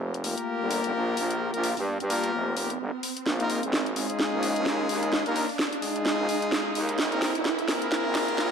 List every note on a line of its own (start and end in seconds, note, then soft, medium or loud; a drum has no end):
0.00 0.35 F1 loud
0.00 riser medium
0.14 closed hi-hat soft
0.24 1.51 A#3 loud
0.24 1.51 F4 loud
0.24 1.51 G4 medium
0.24 1.51 A#4 loud
0.24 open hi-hat loud
0.38 closed hi-hat medium
0.61 0.82 G1 medium
0.71 open hi-hat loud
0.84 0.92 G1 loud
0.84 closed hi-hat medium
0.94 1.16 A#1 medium
1.17 1.52 A#1 loud
1.17 open hi-hat loud
1.31 closed hi-hat medium
1.54 1.75 A#1 medium
1.54 1.74 A#3 loud
1.54 1.74 F4 loud
1.54 1.75 G4 medium
1.54 1.74 A#4 loud
1.54 closed hi-hat soft
1.64 open hi-hat loud
1.77 1.98 G2 loud
1.77 open hi-hat medium
2.00 2.32 G2 loud
2.00 closed hi-hat soft
2.10 2.55 A#3 medium
2.10 2.55 F4 medium
2.10 2.55 G4 medium
2.10 2.55 A#4 loud
2.10 open hi-hat loud
2.24 closed hi-hat medium
2.33 2.78 F1 loud
2.57 2.71 A#3 medium
2.57 2.71 F4 medium
2.57 2.71 G4 medium
2.57 2.71 A#4 medium
2.57 open hi-hat loud
2.70 closed hi-hat medium
2.80 2.91 G1 medium
3.03 open hi-hat loud
3.17 closed hi-hat medium
3.26 3.61 A#1 medium
3.26 snare soft
3.40 3.61 A#3 loud
3.40 3.61 D#4 loud
3.40 3.61 F4 medium
3.40 3.61 A#4 loud
3.40 closed hi-hat soft
3.50 open hi-hat loud
3.63 4.08 G#1 loud
3.63 closed hi-hat medium
3.73 snare medium
3.86 closed hi-hat soft
3.96 5.23 G#3 loud
3.96 5.23 D#4 loud
3.96 5.23 F4 medium
3.96 5.23 G#4 loud
3.96 open hi-hat loud
4.10 closed hi-hat medium
4.19 snare medium
4.33 4.54 A#1 loud
4.43 open hi-hat loud
4.56 4.64 A#1 loud
4.56 closed hi-hat medium
4.66 4.88 D#2 medium
4.66 snare medium
4.89 5.24 D#2 loud
4.89 open hi-hat loud
5.03 closed hi-hat medium
5.13 snare medium
5.26 5.47 D#2 medium
5.26 5.47 A#3 loud
5.26 5.47 D#4 medium
5.26 5.47 F4 medium
5.26 5.47 A#4 loud
5.26 closed hi-hat medium
5.36 open hi-hat loud
5.49 open hi-hat medium
5.59 snare medium
5.73 closed hi-hat medium
5.82 6.97 G#3 loud
5.82 6.97 D#4 loud
5.82 6.97 F4 medium
5.82 6.97 G#4 loud
5.82 open hi-hat loud
5.96 closed hi-hat medium
6.06 snare medium
6.19 6.27 A#1 loud
6.29 open hi-hat loud
6.42 closed hi-hat medium
6.52 snare medium
6.75 6.97 D#2 loud
6.75 open hi-hat loud
6.89 closed hi-hat medium
6.99 7.33 G#1 loud
6.99 snare medium
7.12 7.33 A#3 medium
7.12 7.33 C4 loud
7.12 7.33 G#4 medium
7.12 7.33 A#4 loud
7.12 closed hi-hat medium
7.22 snare medium
7.22 open hi-hat loud
7.35 7.80 D#1 loud
7.35 closed hi-hat medium
7.45 snare medium
7.59 closed hi-hat medium
7.68 8.51 A#3 loud
7.68 8.51 C4 loud
7.68 8.51 G#4 medium
7.68 8.51 A#4 loud
7.68 snare medium
7.68 open hi-hat loud
7.82 closed hi-hat medium
7.92 snare medium
8.05 8.26 G#1 medium
8.15 snare medium
8.15 open hi-hat loud
8.28 8.37 G#1 medium
8.28 closed hi-hat medium
8.38 8.51 C2 loud
8.38 snare medium